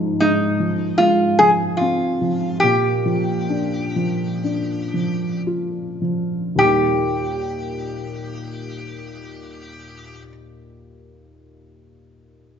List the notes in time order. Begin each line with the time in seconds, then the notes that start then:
Already playing: G#2 F3
0.20 G#3 D#4
0.60 F3
0.98 G#3 F4
1.39 F3 G#4
1.77 F4
1.81 C4
2.21 F3
2.60 A#2 G4
3.06 F3
3.49 D4
3.96 F3
4.44 D4
4.94 F3
5.47 F4
6.02 F3
6.56 D#2 A#2 D#3 G4
6.61 G3 A#3 D#4